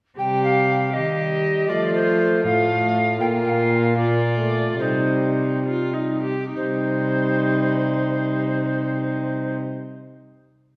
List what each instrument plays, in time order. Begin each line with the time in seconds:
0.18 cello C3, trombone G3, viola G4, recorder G5
0.44 recorder F5
0.93 cello D#3, trombone G3, viola G4, recorder D#5
1.67 cello F3, trombone A3, viola F4, recorder D5
1.94 recorder C5
2.44 cello A2, trombone A3, viola F4, recorder F5
3.19 cello A#2, trombone A#3, viola F4, recorder G5
3.44 recorder G5
3.49 recorder F5
3.96 trombone A#3, viola F4, recorder D5
4.37 trombone A3
4.77 cello C3, trombone G3, viola D#4, recorder C5
5.66 viola F4
5.93 viola D#4
6.23 viola G4
6.53 cello C3, trombone G3, viola D#4, recorder C5